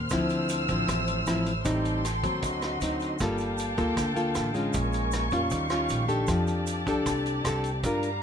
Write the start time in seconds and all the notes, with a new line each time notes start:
Already playing: F6
0.09 D2 D3 F3 C4 E4 C5 E6, kick, cross-stick, closed hi-hat, shaker
0.29 closed hi-hat, shaker
0.49 closed hi-hat, shaker
0.68 A1 F3 C4 E4, kick, closed hi-hat, shaker
0.88 A1 A2, kick, cross-stick, closed hi-hat, shaker
1.07 closed hi-hat, shaker
1.26 A1 F3 C4 E4, cross-stick, closed hi-hat, shaker
1.46 closed hi-hat, shaker
1.65 A1 A2 G3 C4 D#4 A4 G5 C6, kick, closed hi-hat, shaker
1.85 closed hi-hat, shaker
2.05 cross-stick, closed hi-hat, shaker
2.23 D#2 F#3 C4, kick, closed hi-hat, shaker
2.42 D2 D3 F#4 D#5, kick, closed hi-hat, shaker
2.62 cross-stick, closed hi-hat, shaker
2.81 D2 F#3 C4 D#4, closed hi-hat, shaker
3.00 closed hi-hat, shaker
3.19 G1 G3 A#3 F4 A4 F5 G5 A5, kick, cross-stick, closed hi-hat, shaker
3.38 closed hi-hat, shaker
3.58 closed hi-hat, shaker
3.78 D2 A#3 F4 A4, kick, closed hi-hat, shaker
3.96 D2 D3, kick, cross-stick, closed hi-hat, shaker
4.16 A#3 F4 A4, closed hi-hat, shaker
4.35 A1, cross-stick, closed hi-hat, shaker
4.54 G#3 C#4 F4, closed hi-hat, shaker
4.73 A#1 A#2 A#4 G#5 C#6, kick, closed hi-hat, shaker
4.93 closed hi-hat, shaker
5.12 cross-stick, closed hi-hat, shaker
5.31 F2 G3 C#4 F4, kick, closed hi-hat, shaker
5.49 D#2 D#3 G4 F5, kick, closed hi-hat, shaker
5.69 G3 C#4 F4, cross-stick, closed hi-hat, shaker
5.89 A#1, closed hi-hat, shaker
6.08 D4 G4 A4, closed hi-hat, shaker
6.27 F2 F3 D5 A5, kick, cross-stick, closed hi-hat, shaker
6.47 closed hi-hat, shaker
6.67 closed hi-hat, shaker
6.87 C2 D4 G4 A4, kick, closed hi-hat, shaker
7.06 C2 C3, kick, cross-stick, closed hi-hat, shaker
7.26 closed hi-hat, shaker
7.44 C2 D4 G4 A4, cross-stick, closed hi-hat, shaker
7.64 closed hi-hat, shaker
7.83 G2 G3 D4 F4 A#4 F5 A#5, kick, closed hi-hat, shaker
8.03 closed hi-hat, shaker